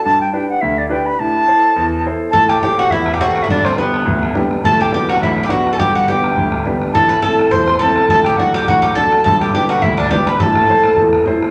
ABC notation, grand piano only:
X:1
M:4/4
L:1/8
Q:"Swing" 1/4=209
K:Ador
V:1 name="Grand piano"
G,,2 [DGB]2 D,,2 [DGB]2 | A,,2 [EAc]2 E,,2 [EAc]2 | [A,,,A,,]2 [GAc]2 E,,2 [GAc]2 | [G,,,G,,]2 [B,DG]2 D,,2 [B,DG]2 |
[D,,,D,,]2 [B,DF]2 A,,,2 [B,DF]2 | [G,,,G,,]2 [B,DG]2 D,,2 [B,DG]2 | [A,,,A,,]2 [CEA]2 E,,2 [CEA]2 | [D,,,D,,]2 [DFA]2 A,,,2 [DFA]2 |
[G,,,G,,]2 [DGB]2 D,,2 [DGB]2 | [A,,,A,,]2 [EAc]2 E,,2 [EAc]2 |]